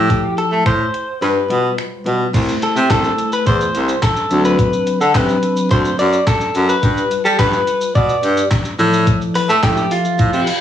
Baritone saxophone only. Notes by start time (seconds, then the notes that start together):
Already playing: A2
0.52 A3
0.66 A2
1.22 G2
1.50 B2
2.06 B2
2.34 C2
2.76 C3
2.90 C2
3.47 E2
3.75 C2
4.31 D2
5.01 D3
5.15 C3
5.71 D2
5.99 F#2
6.55 F#2
6.83 G2
7.25 G3
7.39 G2
7.96 B2
8.23 G2
8.79 A2
9.49 A3
9.63 A2
10.20 A2
10.33 C3